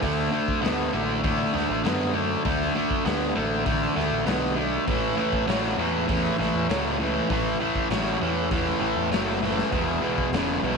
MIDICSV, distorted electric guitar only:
0, 0, Header, 1, 2, 480
1, 0, Start_track
1, 0, Key_signature, 3, "major"
1, 0, Tempo, 606061
1, 21, Time_signature, 4, 2, 24, 8
1, 8532, End_track
2, 0, Start_track
2, 0, Title_t, "Distorted electric guitar"
2, 0, Program_c, 0, 30
2, 12, Note_on_c, 0, 50, 81
2, 19, Note_on_c, 0, 57, 81
2, 232, Note_off_c, 0, 50, 0
2, 236, Note_off_c, 0, 57, 0
2, 254, Note_on_c, 0, 57, 79
2, 257, Note_on_c, 0, 50, 66
2, 474, Note_off_c, 0, 57, 0
2, 475, Note_off_c, 0, 50, 0
2, 488, Note_on_c, 0, 59, 90
2, 489, Note_on_c, 0, 50, 76
2, 711, Note_off_c, 0, 50, 0
2, 711, Note_off_c, 0, 59, 0
2, 736, Note_on_c, 0, 50, 75
2, 739, Note_on_c, 0, 57, 79
2, 954, Note_off_c, 0, 50, 0
2, 956, Note_off_c, 0, 57, 0
2, 979, Note_on_c, 0, 50, 74
2, 981, Note_on_c, 0, 57, 88
2, 1196, Note_off_c, 0, 50, 0
2, 1197, Note_off_c, 0, 57, 0
2, 1212, Note_on_c, 0, 50, 68
2, 1213, Note_on_c, 0, 57, 68
2, 1433, Note_off_c, 0, 50, 0
2, 1433, Note_off_c, 0, 57, 0
2, 1453, Note_on_c, 0, 50, 92
2, 1459, Note_on_c, 0, 59, 93
2, 1673, Note_off_c, 0, 50, 0
2, 1676, Note_off_c, 0, 59, 0
2, 1690, Note_on_c, 0, 57, 68
2, 1691, Note_on_c, 0, 50, 63
2, 1912, Note_off_c, 0, 50, 0
2, 1912, Note_off_c, 0, 57, 0
2, 1939, Note_on_c, 0, 50, 81
2, 1940, Note_on_c, 0, 57, 93
2, 2156, Note_off_c, 0, 50, 0
2, 2156, Note_off_c, 0, 57, 0
2, 2179, Note_on_c, 0, 50, 77
2, 2185, Note_on_c, 0, 57, 79
2, 2396, Note_off_c, 0, 50, 0
2, 2399, Note_off_c, 0, 57, 0
2, 2412, Note_on_c, 0, 50, 68
2, 2417, Note_on_c, 0, 59, 87
2, 2632, Note_off_c, 0, 50, 0
2, 2635, Note_off_c, 0, 59, 0
2, 2654, Note_on_c, 0, 50, 71
2, 2657, Note_on_c, 0, 57, 89
2, 2873, Note_off_c, 0, 50, 0
2, 2875, Note_off_c, 0, 57, 0
2, 2892, Note_on_c, 0, 50, 81
2, 2898, Note_on_c, 0, 57, 81
2, 3112, Note_off_c, 0, 50, 0
2, 3115, Note_off_c, 0, 57, 0
2, 3131, Note_on_c, 0, 50, 70
2, 3138, Note_on_c, 0, 57, 76
2, 3352, Note_off_c, 0, 50, 0
2, 3356, Note_off_c, 0, 57, 0
2, 3371, Note_on_c, 0, 50, 79
2, 3373, Note_on_c, 0, 59, 94
2, 3592, Note_off_c, 0, 50, 0
2, 3593, Note_off_c, 0, 59, 0
2, 3608, Note_on_c, 0, 50, 69
2, 3614, Note_on_c, 0, 57, 76
2, 3831, Note_off_c, 0, 50, 0
2, 3833, Note_off_c, 0, 57, 0
2, 3853, Note_on_c, 0, 45, 85
2, 3861, Note_on_c, 0, 52, 88
2, 4073, Note_off_c, 0, 45, 0
2, 4077, Note_off_c, 0, 52, 0
2, 4085, Note_on_c, 0, 45, 65
2, 4091, Note_on_c, 0, 52, 81
2, 4309, Note_off_c, 0, 45, 0
2, 4312, Note_off_c, 0, 52, 0
2, 4329, Note_on_c, 0, 45, 77
2, 4334, Note_on_c, 0, 54, 86
2, 4551, Note_off_c, 0, 45, 0
2, 4553, Note_off_c, 0, 54, 0
2, 4574, Note_on_c, 0, 45, 78
2, 4576, Note_on_c, 0, 52, 81
2, 4793, Note_off_c, 0, 45, 0
2, 4795, Note_off_c, 0, 52, 0
2, 4807, Note_on_c, 0, 45, 82
2, 4812, Note_on_c, 0, 52, 86
2, 5030, Note_off_c, 0, 45, 0
2, 5033, Note_off_c, 0, 52, 0
2, 5056, Note_on_c, 0, 45, 65
2, 5059, Note_on_c, 0, 52, 72
2, 5274, Note_off_c, 0, 45, 0
2, 5276, Note_off_c, 0, 52, 0
2, 5297, Note_on_c, 0, 45, 87
2, 5300, Note_on_c, 0, 54, 94
2, 5515, Note_off_c, 0, 45, 0
2, 5517, Note_off_c, 0, 54, 0
2, 5537, Note_on_c, 0, 45, 60
2, 5542, Note_on_c, 0, 52, 77
2, 5755, Note_off_c, 0, 45, 0
2, 5758, Note_off_c, 0, 52, 0
2, 5776, Note_on_c, 0, 45, 76
2, 5779, Note_on_c, 0, 52, 94
2, 5995, Note_off_c, 0, 45, 0
2, 5996, Note_off_c, 0, 52, 0
2, 6020, Note_on_c, 0, 45, 63
2, 6022, Note_on_c, 0, 52, 80
2, 6237, Note_off_c, 0, 45, 0
2, 6238, Note_off_c, 0, 52, 0
2, 6261, Note_on_c, 0, 45, 77
2, 6265, Note_on_c, 0, 54, 94
2, 6477, Note_off_c, 0, 45, 0
2, 6479, Note_off_c, 0, 54, 0
2, 6500, Note_on_c, 0, 45, 77
2, 6500, Note_on_c, 0, 52, 87
2, 6717, Note_off_c, 0, 45, 0
2, 6717, Note_off_c, 0, 52, 0
2, 6741, Note_on_c, 0, 45, 83
2, 6742, Note_on_c, 0, 52, 86
2, 6957, Note_off_c, 0, 45, 0
2, 6958, Note_off_c, 0, 52, 0
2, 6971, Note_on_c, 0, 45, 63
2, 6976, Note_on_c, 0, 52, 65
2, 7192, Note_off_c, 0, 45, 0
2, 7195, Note_off_c, 0, 52, 0
2, 7218, Note_on_c, 0, 54, 97
2, 7219, Note_on_c, 0, 45, 86
2, 7436, Note_off_c, 0, 45, 0
2, 7436, Note_off_c, 0, 54, 0
2, 7462, Note_on_c, 0, 52, 80
2, 7465, Note_on_c, 0, 45, 64
2, 7678, Note_off_c, 0, 52, 0
2, 7680, Note_off_c, 0, 45, 0
2, 7693, Note_on_c, 0, 40, 74
2, 7695, Note_on_c, 0, 47, 89
2, 7914, Note_off_c, 0, 40, 0
2, 7914, Note_off_c, 0, 47, 0
2, 7933, Note_on_c, 0, 40, 60
2, 7938, Note_on_c, 0, 47, 77
2, 8154, Note_off_c, 0, 40, 0
2, 8156, Note_off_c, 0, 47, 0
2, 8187, Note_on_c, 0, 40, 82
2, 8189, Note_on_c, 0, 49, 90
2, 8401, Note_off_c, 0, 40, 0
2, 8402, Note_off_c, 0, 49, 0
2, 8412, Note_on_c, 0, 40, 84
2, 8423, Note_on_c, 0, 47, 83
2, 8532, Note_off_c, 0, 40, 0
2, 8532, Note_off_c, 0, 47, 0
2, 8532, End_track
0, 0, End_of_file